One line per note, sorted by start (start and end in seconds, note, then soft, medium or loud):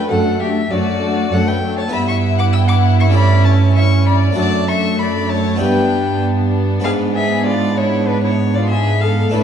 0.00 1.86 A3 soft
0.00 1.87 D4 soft
0.00 1.88 F#4 soft
0.09 0.60 F#2 soft
0.09 0.61 F#2 medium
0.09 0.39 A3 soft
0.09 0.40 D4 soft
0.09 0.40 A4 medium
0.09 0.42 F#5 medium
0.40 0.69 A3 soft
0.40 0.70 D4 soft
0.40 0.48 G4 medium
0.40 0.73 E5 medium
0.70 1.22 F#2 medium
0.70 1.22 F#2 soft
0.70 1.00 A3 soft
0.70 1.00 D4 soft
0.70 1.30 F#4 medium
0.70 1.34 D5 medium
1.01 1.31 A3 soft
1.01 1.31 D4 soft
1.31 1.83 F#2 medium
1.31 1.83 F#2 soft
1.31 1.60 A3 soft
1.31 1.62 D4 soft
1.31 1.47 A4 medium
1.31 1.49 F#5 medium
1.47 1.55 B4 medium
1.47 1.78 G5 medium
1.62 1.92 A3 soft
1.62 1.93 D4 medium
1.77 1.83 C#5 medium
1.77 1.94 A5 medium
1.88 3.09 B3 soft
1.88 3.10 E4 soft
1.88 2.05 E5 medium
1.92 4.33 G2 soft
1.92 4.34 G2 medium
1.92 3.11 B3 medium
1.92 4.34 E4 medium
1.92 2.08 B5 medium
2.06 2.37 E5 medium
2.06 2.16 C#6 medium
2.37 2.53 F#5 medium
2.37 2.45 D6 medium
2.53 2.69 G5 medium
2.53 2.59 E6 medium
2.68 2.99 F#5 medium
2.68 2.76 D6 medium
2.98 3.14 E5 medium
2.98 3.06 C#6 medium
3.10 4.31 A3 soft
3.10 4.32 C#4 soft
3.10 4.33 E4 soft
3.10 3.45 D5 medium
3.10 3.46 B5 medium
3.15 4.37 C#4 medium
3.44 3.52 C#5 medium
3.44 3.75 A5 medium
3.75 3.84 E5 medium
3.75 4.06 C#6 medium
4.06 4.37 D5 medium
4.06 4.15 B5 medium
4.32 5.54 A3 soft
4.32 5.55 D4 soft
4.32 5.56 F#4 soft
4.37 5.56 F#2 soft
4.37 5.58 F#2 medium
4.37 5.58 A3 medium
4.37 9.30 D4 medium
4.37 4.68 D5 medium
4.37 4.69 A5 medium
4.68 4.98 E5 medium
4.68 5.00 C#6 medium
4.99 5.29 D5 medium
4.99 5.31 B5 medium
5.30 5.61 C#5 medium
5.30 5.60 A5 medium
5.56 6.84 G2 medium
5.56 6.78 B3 soft
5.56 6.79 D4 soft
5.56 6.80 E4 soft
5.60 6.80 G2 soft
5.60 9.34 B3 medium
5.60 6.22 B4 medium
5.60 6.21 G5 medium
6.80 9.30 G#2 medium
6.80 9.28 B3 soft
6.80 9.28 D4 soft
6.80 6.91 G#4 medium
6.84 9.30 G#2 soft
6.84 6.92 F5 medium
7.16 7.46 G#4 medium
7.16 7.45 E5 medium
7.46 7.77 F4 medium
7.46 7.79 D5 medium
7.77 8.07 E4 medium
7.77 8.09 C#5 medium
8.08 8.23 D4 medium
8.08 8.22 B4 medium
8.23 8.32 E4 medium
8.23 8.56 C#5 medium
8.55 8.70 F4 medium
8.55 8.69 D5 medium
8.69 9.02 G#4 medium
8.69 9.03 E5 medium
9.01 9.34 A4 medium
9.01 9.33 F5 medium
9.29 9.43 A2 medium
9.29 9.43 A3 soft
9.29 9.43 D4 soft
9.29 9.43 D4 medium
9.29 9.43 E4 soft
9.34 9.43 A2 soft
9.34 9.43 A3 medium
9.34 9.43 D4 medium
9.34 9.43 B4 medium